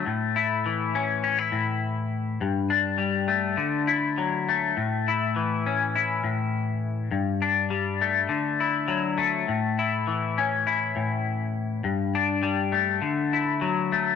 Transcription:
\new Staff \with { instrumentName = "Clean electric guitar" } { \time 4/4 \key a \mixolydian \tempo 4 = 102 << { a8 e'4 cis'8 cis'16 e'4.~ e'16 | r8 d'4 a4 e'4 a8~ | a8 e'4 cis'8 e'2 | r8 d'4 a4 e'4 a8~ |
a8 e'4 cis'8 e'2 | r8 d'4 a4 e'4 a8 | } \\ { a,4 e4. a,4. | g,4 g4 d4 fis4 | a,4 e4. a,4. | g,4 g4 d4 fis4 |
a,4 e4. a,4. | g,4 g4 d4 fis4 | } >> }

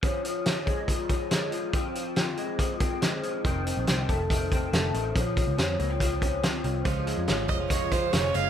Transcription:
<<
  \new Staff \with { instrumentName = "Violin" } { \time 4/4 \key des \major \tempo 4 = 141 r1 | r1 | r1 | r1 |
r4. ees''8 des''8 c''8 des''8 f''8 | }
  \new Staff \with { instrumentName = "Clean electric guitar" } { \clef bass \time 4/4 \key des \major <f des'>8 f8 des'8 aes8 f8 des'8 aes8 f8 | <f c'>8 f8 c'8 aes8 f8 c'8 aes8 f8 | <ees c'>8 ees8 c'8 a8 ees8 c'8 a8 ees8 | <f des'>8 f8 des'8 bes16 c'16 f8 des'8 c'8 f8 |
f8 aes8 des'8 f8 aes8 f8 des'8 aes8 | }
  \new Staff \with { instrumentName = "Clean electric guitar" } { \clef bass \time 4/4 \key des \major r1 | r1 | r1 | r1 |
<f aes des' f'>4 <f aes des' f'>8. <des f aes des' f'>8. <des f aes des' f'>8. <aes des' f'>8. | }
  \new Staff \with { instrumentName = "Picked electric bass" } { \clef bass \time 4/4 \key des \major r1 | r1 | f,,8. bes,,16 c,8 f,,4. f,,8 a,,8 | bes,,8. des,16 f,8 des,2 c,8 |
des,8. f,16 aes,,8 f,,4. f,,8 ges,,8 | }
  \new DrumStaff \with { instrumentName = "Drums" } \drummode { \time 4/4 <hh bd>8 hh8 <hh sn>8 <hh bd>8 <hh bd>8 <hh bd>8 <hh sn>8 hh8 | <hh bd>8 hh8 <hh sn>8 hh8 <hh bd>8 <hh bd>8 <hh sn>8 hh8 | <hh bd>8 hh8 <hh sn>8 <hh bd>8 <hh bd>8 <hh bd>8 <hh sn>8 hh8 | <hh bd>8 <hh bd>8 <hh sn>8 hh8 <hh bd>8 <hh bd>8 <hh sn>8 hh8 |
<hh bd>8 hh8 <hh sn>8 <hh bd>8 <hh bd>8 <hh bd>8 <hh sn>8 hh8 | }
>>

